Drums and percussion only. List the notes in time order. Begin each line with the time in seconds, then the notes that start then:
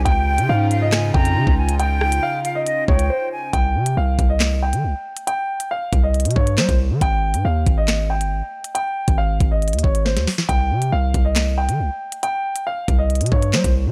0.06 kick, closed hi-hat
0.38 closed hi-hat
0.71 closed hi-hat
0.92 cross-stick, snare, clap, closed hi-hat
1.14 kick
1.25 closed hi-hat
1.47 kick
1.69 closed hi-hat
1.80 closed hi-hat
2.01 cross-stick
2.12 closed hi-hat
2.45 closed hi-hat
2.67 closed hi-hat
2.88 kick
2.99 closed hi-hat
3.53 kick, closed hi-hat
3.86 closed hi-hat
4.19 kick, closed hi-hat
4.40 snare, clap, closed hi-hat
4.73 closed hi-hat
5.17 closed hi-hat
5.27 closed hi-hat
5.60 closed hi-hat
5.93 kick, closed hi-hat
6.14 closed hi-hat
6.20 closed hi-hat
6.25 closed hi-hat
6.31 closed hi-hat
6.36 kick
6.47 closed hi-hat
6.58 snare, clap
6.69 kick, closed hi-hat
7.01 kick, closed hi-hat
7.34 closed hi-hat
7.67 kick, closed hi-hat
7.88 snare, clap, closed hi-hat
8.21 closed hi-hat
8.64 closed hi-hat
8.75 closed hi-hat
9.08 kick, closed hi-hat
9.40 kick, closed hi-hat
9.62 closed hi-hat
9.68 closed hi-hat
9.73 closed hi-hat
9.79 closed hi-hat
9.84 kick
9.95 closed hi-hat
10.06 snare
10.17 snare, closed hi-hat
10.27 snare, open hi-hat
10.38 snare
10.49 kick, closed hi-hat
10.82 closed hi-hat
11.14 kick, closed hi-hat
11.36 snare, clap, closed hi-hat
11.69 closed hi-hat
12.12 closed hi-hat
12.23 closed hi-hat
12.56 closed hi-hat
12.88 kick, closed hi-hat
13.10 closed hi-hat
13.15 closed hi-hat
13.21 closed hi-hat
13.26 closed hi-hat
13.32 kick
13.42 closed hi-hat
13.53 snare, clap
13.64 kick, closed hi-hat